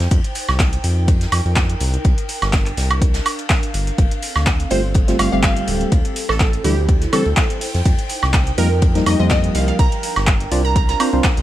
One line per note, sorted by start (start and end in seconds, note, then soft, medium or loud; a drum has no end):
0.00 0.08 F2 medium
0.00 2.05 D#4 medium
0.00 0.75 C5 medium
0.00 2.83 G5 medium
0.00 snare medium
0.00 closed hi-hat soft
0.11 0.20 F2 loud
0.11 kick loud
0.11 closed hi-hat medium
0.11 ride medium
0.24 closed hi-hat medium
0.30 3.98 A#4 medium
0.35 open hi-hat loud
0.35 ride medium
0.48 0.78 C2 medium
0.48 snare medium
0.48 high woodblock medium
0.59 kick loud
0.59 snare loud
0.59 clap loud
0.59 closed hi-hat medium
0.59 ride medium
0.73 closed hi-hat medium
0.84 1.26 F2 medium
0.84 open hi-hat loud
0.84 ride medium
1.08 kick loud
1.08 closed hi-hat medium
1.08 ride medium
1.21 snare soft
1.21 closed hi-hat medium
1.32 1.41 F2 medium
1.32 snare soft
1.32 open hi-hat loud
1.32 ride medium
1.32 high woodblock medium
1.45 1.75 F2 medium
1.45 ride soft
1.56 kick loud
1.56 snare loud
1.56 clap loud
1.56 closed hi-hat medium
1.56 ride medium
1.70 closed hi-hat medium
1.80 1.97 C2 loud
1.80 open hi-hat loud
1.80 ride medium
1.94 closed hi-hat soft
2.04 2.14 C2 loud
2.04 4.76 D4 medium
2.04 kick loud
2.04 closed hi-hat medium
2.04 ride medium
2.18 closed hi-hat medium
2.28 open hi-hat loud
2.28 ride medium
2.42 2.71 G1 medium
2.42 snare soft
2.42 closed hi-hat soft
2.42 high woodblock medium
2.53 kick loud
2.53 snare loud
2.53 clap loud
2.53 closed hi-hat medium
2.53 ride medium
2.66 clap soft
2.66 closed hi-hat medium
2.77 3.20 C2 medium
2.77 snare medium
2.77 open hi-hat loud
2.77 ride medium
2.90 5.92 F5 medium
2.90 closed hi-hat soft
2.90 high woodblock medium
3.02 kick loud
3.02 closed hi-hat medium
3.02 ride medium
3.14 snare loud
3.14 closed hi-hat medium
3.14 ride medium
3.26 open hi-hat loud
3.26 high woodblock medium
3.39 closed hi-hat soft
3.39 ride medium
3.50 kick loud
3.50 snare loud
3.50 clap loud
3.50 open hi-hat medium
3.50 ride medium
3.63 closed hi-hat medium
3.74 3.91 G1 medium
3.74 open hi-hat loud
3.74 ride medium
3.87 closed hi-hat soft
3.98 4.07 G1 loud
3.98 6.60 C4 medium
3.98 kick loud
3.98 closed hi-hat medium
3.98 ride medium
4.11 6.60 A4 medium
4.11 closed hi-hat medium
4.22 open hi-hat loud
4.22 ride medium
4.35 4.65 D2 medium
4.35 snare medium
4.35 high woodblock medium
4.46 kick loud
4.46 snare loud
4.46 clap loud
4.46 closed hi-hat medium
4.46 ride medium
4.60 closed hi-hat medium
4.70 5.13 G1 medium
4.70 4.81 G3 medium
4.70 4.81 A3 medium
4.70 4.81 C4 medium
4.70 4.81 F4 medium
4.70 4.86 C5 medium
4.70 open hi-hat loud
4.70 ride medium
4.94 kick loud
4.94 closed hi-hat medium
4.94 ride medium
5.08 5.17 G3 loud
5.08 5.17 A3 medium
5.08 5.17 C4 medium
5.08 5.17 F4 loud
5.08 snare soft
5.08 closed hi-hat medium
5.19 5.28 G1 medium
5.19 5.29 G3 medium
5.19 5.30 A3 medium
5.19 5.30 C4 medium
5.19 5.30 F4 loud
5.19 5.28 F5 medium
5.19 snare soft
5.19 open hi-hat loud
5.19 ride medium
5.19 high woodblock medium
5.32 5.62 G1 medium
5.32 5.90 G3 medium
5.32 5.90 A3 medium
5.32 5.91 C4 medium
5.32 5.91 G4 loud
5.32 5.40 F5 medium
5.32 ride soft
5.43 5.81 F5 medium
5.43 kick loud
5.43 snare loud
5.43 clap loud
5.43 closed hi-hat medium
5.43 ride medium
5.57 closed hi-hat medium
5.67 5.84 D1 loud
5.67 open hi-hat loud
5.67 ride medium
5.81 closed hi-hat soft
5.92 6.01 D2 loud
5.92 7.61 E4 medium
5.92 kick loud
5.92 closed hi-hat medium
5.92 ride medium
6.05 closed hi-hat medium
6.16 open hi-hat loud
6.16 ride medium
6.29 6.59 A1 medium
6.29 6.36 A4 medium
6.29 8.49 C5 medium
6.29 snare soft
6.29 high woodblock medium
6.40 6.49 A4 medium
6.40 kick loud
6.40 snare loud
6.40 clap loud
6.40 closed hi-hat medium
6.40 ride medium
6.53 closed hi-hat medium
6.64 7.07 D2 loud
6.64 6.75 D3 medium
6.64 6.75 E3 medium
6.64 6.75 G3 medium
6.64 6.75 E4 medium
6.64 6.80 G4 medium
6.64 10.57 G5 medium
6.64 open hi-hat loud
6.64 ride medium
6.89 kick loud
6.89 closed hi-hat medium
6.89 ride medium
7.02 snare soft
7.02 closed hi-hat medium
7.13 7.23 D3 loud
7.13 7.23 E3 medium
7.13 7.23 G3 medium
7.13 7.23 C4 loud
7.13 7.50 A4 medium
7.13 open hi-hat loud
7.13 ride medium
7.13 high woodblock medium
7.25 7.33 D2 loud
7.25 ride soft
7.37 kick loud
7.37 snare loud
7.37 clap loud
7.37 closed hi-hat medium
7.37 ride medium
7.50 closed hi-hat medium
7.61 9.79 D#4 medium
7.61 open hi-hat loud
7.61 open hi-hat medium
7.74 7.82 F2 medium
7.74 snare soft
7.74 closed hi-hat soft
7.85 7.94 F2 loud
7.85 kick loud
7.85 closed hi-hat medium
7.85 ride medium
7.99 closed hi-hat soft
8.04 11.42 A#4 medium
8.09 open hi-hat loud
8.09 ride medium
8.23 8.52 C2 medium
8.23 snare medium
8.23 high woodblock medium
8.34 kick loud
8.34 snare loud
8.34 clap loud
8.34 closed hi-hat medium
8.34 ride medium
8.47 closed hi-hat medium
8.58 9.00 F2 medium
8.58 8.68 F3 medium
8.58 8.68 G3 medium
8.58 8.68 A#3 medium
8.58 8.68 D#4 medium
8.58 8.73 A#4 medium
8.58 open hi-hat loud
8.58 ride medium
8.82 kick loud
8.82 closed hi-hat medium
8.82 ride medium
8.95 9.04 F3 medium
8.95 9.04 G3 medium
8.95 9.04 A#3 medium
8.95 9.04 D#4 loud
8.95 snare soft
8.95 closed hi-hat medium
9.06 9.15 F2 medium
9.06 9.17 F3 medium
9.06 9.17 G3 medium
9.06 9.17 A#3 medium
9.06 9.17 D#4 loud
9.06 9.15 D#5 medium
9.06 snare soft
9.06 open hi-hat loud
9.06 ride medium
9.06 high woodblock medium
9.19 9.49 F2 medium
9.19 9.78 F3 loud
9.19 9.78 G3 medium
9.19 9.78 A#3 medium
9.19 9.78 F4 loud
9.19 9.27 D#5 medium
9.19 ride soft
9.29 9.68 D#5 medium
9.29 kick loud
9.29 snare loud
9.29 clap loud
9.29 closed hi-hat medium
9.29 ride medium
9.44 closed hi-hat medium
9.55 9.72 C2 loud
9.55 9.63 F5 medium
9.55 open hi-hat loud
9.55 ride medium
9.68 9.75 F5 medium
9.68 closed hi-hat soft
9.79 9.88 C2 loud
9.79 11.42 D4 medium
9.79 10.27 A#5 medium
9.79 kick loud
9.79 closed hi-hat medium
9.79 ride medium
9.92 closed hi-hat medium
10.03 open hi-hat loud
10.03 ride medium
10.16 10.46 G1 medium
10.16 snare soft
10.16 closed hi-hat soft
10.16 high woodblock medium
10.27 kick loud
10.27 snare loud
10.27 clap loud
10.27 closed hi-hat medium
10.27 ride medium
10.40 11.42 F5 medium
10.40 closed hi-hat soft
10.51 10.94 C2 loud
10.51 10.62 C4 medium
10.51 10.62 D4 medium
10.51 10.62 F4 medium
10.51 10.62 D5 medium
10.51 open hi-hat loud
10.51 ride medium
10.65 10.72 A#5 medium
10.76 10.84 A#5 medium
10.76 kick loud
10.76 closed hi-hat medium
10.76 ride medium
10.88 10.96 A#5 medium
10.88 snare soft
10.88 closed hi-hat soft
11.00 11.10 C4 loud
11.00 11.10 D4 medium
11.00 11.10 F4 medium
11.00 11.10 C5 loud
11.00 11.08 A#5 medium
11.00 open hi-hat loud
11.00 ride medium
11.00 high woodblock medium
11.12 11.20 C2 loud
11.12 11.27 C4 medium
11.12 11.27 D4 medium
11.12 11.27 F4 medium
11.12 11.28 C5 loud
11.12 ride soft
11.23 kick loud
11.23 snare loud
11.23 clap loud
11.23 closed hi-hat medium
11.23 ride medium
11.37 11.42 C2 loud
11.37 closed hi-hat soft